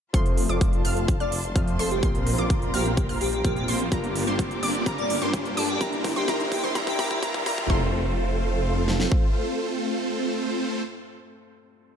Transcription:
0.13 detuned saw bass F1, grand piano F3 A3 C4 F4, supersaw synth A3 C4 F4 A4 C5, synth pluck C6, kick, closed hi-hat, riser
0.26 closed hi-hat
0.37 open hi-hat
0.48 detuned saw bass F1, grand piano F3 A3 C4 F4, supersaw synth A3 C4 F4 A4 D5, synth pluck D6, closed hi-hat
0.61 kick, closed hi-hat
0.73 closed hi-hat
0.85 detuned saw bass F1, supersaw synth A3 C4 F4 A4 F5, synth pluck F6, open hi-hat
0.97 closed hi-hat
1.08 kick, closed hi-hat
1.20 detuned saw bass F1, supersaw synth A3 C4 F4 A4, digital synth lead D5, synth pluck F6, closed hi-hat
1.32 open hi-hat
1.44 closed hi-hat
1.55 detuned saw bass F2, grand piano F3 A3 C4 F4, supersaw synth A3 C4 F4 A4 F5, synth pluck F6, kick, closed hi-hat
1.68 closed hi-hat
1.79 detuned saw bass F1, supersaw synth A3 C4 F4 A4 C5, digital synth lead A4, synth pluck C6, open hi-hat
1.91 digital synth lead G4, closed hi-hat
2.02 detuned saw bass A#1, grand piano A#2 F3 A#3 C4 F4, supersaw synth A#3 C4 A#4 C5, string section A#5, synth pluck C6, kick, closed hi-hat
2.15 closed hi-hat
2.27 open hi-hat
2.37 detuned saw bass A#1, grand piano A#2 F3 A#3 C4 F4, supersaw synth A#3 C4 F4 A#4 D5, synth pluck D6, closed hi-hat
2.50 kick, closed hi-hat
2.62 closed hi-hat
2.74 detuned saw bass A#1, supersaw synth A#3 C4 F4 A#4 F5, digital synth lead G4, synth pluck F6, open hi-hat
2.86 closed hi-hat
2.97 kick, closed hi-hat
3.09 detuned saw bass A#1, supersaw synth A#3 C4 F4 A#4 F5, synth pluck F6, open hi-hat
3.21 digital synth lead G4, open hi-hat
3.33 digital synth lead G4, closed hi-hat
3.44 detuned saw bass A#1, grand piano A#2 F3 A#3 C4 F4, supersaw synth A#3 C4 F4 A#4 F5, digital synth lead G4, synth pluck F6, kick, closed hi-hat
3.56 digital synth lead G4, closed hi-hat
3.68 detuned saw bass A#1, supersaw synth A#3 C4 F4 A#4 C5, digital synth lead G4, synth pluck C6, open hi-hat
3.80 closed hi-hat
3.91 detuned saw bass G1, grand piano G2 G3 A#3 D4 F4, supersaw synth A#3 D4 F4 G4 A#4, string section A#4 G5 D6, synth pluck A#5, kick, closed hi-hat
4.04 closed hi-hat
4.16 open hi-hat
4.26 detuned saw bass G1, grand piano G2 G3 A#3 D4 F4, supersaw synth A#3 D4 F4 G4 C5, synth pluck C6, closed hi-hat
4.39 kick, closed hi-hat
4.51 closed hi-hat
4.63 detuned saw bass G1, supersaw synth A#3 D4 F4 G4 D5, synth pluck D6, open hi-hat
4.75 closed hi-hat
4.86 detuned saw bass G1, grand piano G2 G3 A#3 D4 F4, supersaw synth A#3 D4 F4 G4 A#4, synth pluck A#5, kick, closed hi-hat
4.98 digital synth lead D5, closed hi-hat
5.10 open hi-hat
5.21 grand piano G2 G3 A#3 D4 F4, detuned saw bass G2, supersaw synth A#3 D4 F4 G4 C5, synth pluck C6, closed hi-hat
5.34 kick, closed hi-hat
5.45 closed hi-hat
5.57 detuned saw bass G2, supersaw synth A#3 D4 F4 G4 D5, digital synth lead A4, synth pluck D6, open hi-hat
5.69 digital synth lead G4, closed hi-hat
5.80 detuned saw bass G1, grand piano G2 G3 A#3 D4 E4, supersaw synth A#3 E4 A#4, string section E4 C5 C6, synth pluck A#5, kick, closed hi-hat
5.93 closed hi-hat
6.04 kick, open hi-hat
6.15 detuned saw bass G1, grand piano G2 G3 A#3 D4 E4, supersaw synth A#3 D4 E4 G4 C5, digital synth lead G4, synth pluck C6, closed hi-hat
6.27 detuned saw bass G1, grand piano G2 G3 A#3 D4 E4, supersaw synth A#3 D4 E4 G4 A#4, synth pluck A#5, kick, closed hi-hat
6.40 closed hi-hat
6.52 digital synth lead G4, kick, open hi-hat
6.62 detuned saw bass G1, grand piano G2 G3 A#3 D4 E4, supersaw synth A#3 D4 E4 G4 C5, synth pluck C6, closed hi-hat
6.75 detuned saw bass G1, grand piano G2 G3 A#3 D4 E4, supersaw synth A#3 D4 E4 G4 A#4, synth pluck A#5, kick, closed hi-hat
6.87 digital synth lead G4, kick, open hi-hat
6.98 detuned saw bass G1, grand piano G2 G3 A#3 D4 E4, supersaw synth A#3 D4 E4 G4 A#4, digital synth lead G4, synth pluck A#5, kick, open hi-hat
7.11 digital synth lead G4, kick, closed hi-hat
7.22 grand piano G2 G3 A#3 D4 E4, detuned saw bass G2, supersaw synth A#3 D4 E4 G4 A#4, synth pluck A#5, kick, closed hi-hat
7.34 kick, closed hi-hat
7.46 grand piano G2 G3 A#3 D4 E4, detuned saw bass G2, supersaw synth A#3 D4 E4 G4 A#4, synth pluck A#5, kick, open hi-hat
7.58 kick
7.68 detuned saw bass F1, grand piano A3 C4 F4 A4, supersaw synth A3 C4 F4 A4 C5, string section A3 F4 C5 F5, synth pluck C6, kick
8.88 snare
9.00 snare
9.12 kick

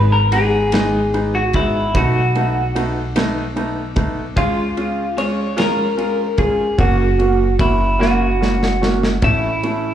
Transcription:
Already playing: upright bass G#1, grand piano G#3 B3 D#4, clean electric guitar B4
0.12 clean electric guitar A#4
0.31 grand piano G#3 B3 D#4, clean electric guitar G#4, ride
0.72 grand piano G#3 B3 D#4, snare, ride
1.14 grand piano G#3 B3 D#4, ride
1.35 clean electric guitar F#4
1.53 grand piano G#3 B3 D#4, clean electric guitar E4, kick, ride
1.95 upright bass B1, grand piano A3 B3 D#4, clean electric guitar F#4, kick, ride
2.35 grand piano A3 B3 D#4, ride
2.75 grand piano A3 B3 D#4, ride
3.16 grand piano A3 B3 D#4, snare, ride
3.56 grand piano A3 B3 D#4, ride
3.96 grand piano A3 B3 D#4, kick, ride
4.36 upright bass C#2, grand piano G#3 C#4 F4, clean electric guitar F4, kick, ride
4.77 grand piano G#3 C#4 F4, ride
5.17 grand piano G#3 C#4 F4, clean electric guitar C#5, ride
5.57 grand piano G#3 C#4 F4, clean electric guitar A#4, snare, ride
5.97 grand piano G#3 C#4 F4, ride
6.38 grand piano G#3 C#4 F4, clean electric guitar G#4, kick, ride
6.78 upright bass F#1, grand piano A#3 C#4 F#4, clean electric guitar F#4, kick, ride
7.19 grand piano A#3 C#4 F#4, ride
7.59 grand piano A#3 C#4 F#4, clean electric guitar E4, kick, ride
7.99 grand piano A#3 C#4 F#4, clean electric guitar F#4, snare
8.40 grand piano A#3 C#4 F#4, snare
8.63 snare
8.81 grand piano A#3 C#4 F#4, snare
9.03 snare
9.22 upright bass A1, grand piano A3 C#4 E4, clean electric guitar E4, kick, ride
9.63 grand piano A3 C#4 E4, ride

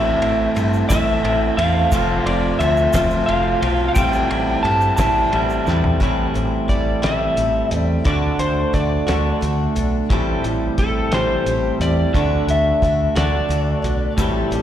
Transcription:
Already playing: fingered electric bass A1, steel-string acoustic guitar A2 E3 A3 C4 E4 A4, electric slide guitar E5
0.20 fingered electric bass A1, clean electric guitar A3 C4 E4, ride
0.55 fingered electric bass G2, steel-string acoustic guitar A3 C4 E4 A4, ride, shaker
0.73 shaker
0.89 fingered electric bass A1, steel-string acoustic guitar A2 E3 A3 C4 E4 A4, electric slide guitar E5, kick, snare, ride, shaker
1.23 fingered electric bass A1, clean electric guitar E3 A3 C4 E4, ride
1.57 fingered electric bass E2, steel-string acoustic guitar C4 A4, clean electric guitar E4, electric slide guitar F5, ride
1.61 steel-string acoustic guitar A3
1.91 fingered electric bass F1, clean electric guitar F2 C3, steel-string acoustic guitar F3 A3 C4 F4 A4, kick, ride, shaker
2.25 fingered electric bass F1, clean electric guitar F3 A3 C4 F4, electric slide guitar D5, ride
2.59 fingered electric bass D2, steel-string acoustic guitar A3 C4 F4 A4, electric slide guitar E5, ride, shaker
2.77 shaker
2.93 fingered electric bass F1, clean electric guitar F2 C3, steel-string acoustic guitar F3 A3 C4 F4 A4, kick, snare, ride, shaker
3.10 shaker
3.26 fingered electric bass F1, clean electric guitar F3 A3 C4 F4, electric slide guitar F5, ride
3.62 fingered electric bass B1, clean electric guitar F3 A3, steel-string acoustic guitar C4 F4 A4, ride
3.88 electric slide guitar F5
3.95 fingered electric bass A1, steel-string acoustic guitar A2 E3 G3 C4 E4, electric slide guitar G5, kick, ride, shaker
3.99 steel-string acoustic guitar A4
4.13 shaker
4.30 fingered electric bass A1, clean electric guitar G3 C4 E4, ride
4.63 fingered electric bass G2, steel-string acoustic guitar G3 C4 E4, electric slide guitar A5, ride
4.67 steel-string acoustic guitar A4
4.81 shaker
4.96 fingered electric bass A1, steel-string acoustic guitar A2 E3 G3 C4 E4 A4, electric slide guitar A5, kick, snare, ride, shaker
5.32 fingered electric bass A1, clean electric guitar E3 G3 C4 E4, ride
5.50 shaker
5.66 fingered electric bass E2, steel-string acoustic guitar G3 C4 E4 A4, snare, shaker
5.84 floor tom
6.00 fingered electric bass A1, steel-string acoustic guitar A2 E3 G3 C4 E4 A4, kick, closed hi-hat
6.34 fingered electric bass A1, steel-string acoustic guitar G3 C4 E4 A4, closed hi-hat
6.68 fingered electric bass A1, steel-string acoustic guitar G3 C4 E4 A4, electric slide guitar D5, kick, closed hi-hat
7.02 fingered electric bass A1, steel-string acoustic guitar A2 E3 G3 C4 E4 A4, electric slide guitar E5, snare, closed hi-hat
7.36 fingered electric bass A1, steel-string acoustic guitar G3 C4 E4 A4, closed hi-hat
7.71 fingered electric bass E2, steel-string acoustic guitar G3 C4 E4 A4, closed hi-hat
7.77 electric slide guitar D5
8.04 fingered electric bass D2, steel-string acoustic guitar D3 A3 D4 F#4 A4, electric slide guitar D5, kick, closed hi-hat
8.39 fingered electric bass D2, steel-string acoustic guitar D4 F#4 A4, electric slide guitar C5, closed hi-hat
8.73 fingered electric bass D2, steel-string acoustic guitar A3 D4 F#4 A4, electric slide guitar D5, kick, closed hi-hat
9.07 fingered electric bass D2, steel-string acoustic guitar D3 A3 D4 F#4 A4, snare, closed hi-hat
9.41 fingered electric bass D2, steel-string acoustic guitar A3 D4 F#4 A4, closed hi-hat
9.75 fingered electric bass B1, steel-string acoustic guitar D4 F#4 A4, closed hi-hat
10.10 fingered electric bass A1, steel-string acoustic guitar A2 E3 G3 C4 E4 A4, clean electric guitar G4, kick, closed hi-hat
10.44 fingered electric bass A1, steel-string acoustic guitar G3 C4 E4 A4, closed hi-hat
10.78 fingered electric bass A1, steel-string acoustic guitar G3 C4 E4 A4, electric slide guitar A4, kick, closed hi-hat
11.11 fingered electric bass A1, steel-string acoustic guitar A2 E3 G3 C4 E4 A4, clean electric guitar G4, electric slide guitar C5, snare, closed hi-hat
11.46 fingered electric bass A1, steel-string acoustic guitar G3 C4 E4 A4, closed hi-hat
11.80 fingered electric bass E2, steel-string acoustic guitar C4 E4 A4, electric slide guitar D5, closed hi-hat
11.84 steel-string acoustic guitar G3
12.14 fingered electric bass D2, steel-string acoustic guitar D3 A3 D4 F#4 A4, kick, closed hi-hat
12.47 fingered electric bass D2, steel-string acoustic guitar F#4 A4, electric slide guitar E5, closed hi-hat
12.52 steel-string acoustic guitar D4
12.82 fingered electric bass D2, steel-string acoustic guitar A3 D4 F#4 A4, kick, closed hi-hat
13.15 fingered electric bass D2, steel-string acoustic guitar D3 A3 D4 F#4 A4, electric slide guitar D5, snare, closed hi-hat
13.49 fingered electric bass D2, steel-string acoustic guitar A3 D4 F#4 A4, closed hi-hat
13.82 fingered electric bass B1, steel-string acoustic guitar D4 F#4 A4, closed hi-hat
14.17 fingered electric bass A1, steel-string acoustic guitar A2 E3 G3 C4 E4 A4, clean electric guitar G4, kick, closed hi-hat, shaker
14.50 fingered electric bass A1, steel-string acoustic guitar G3 C4 E4 A4, closed hi-hat

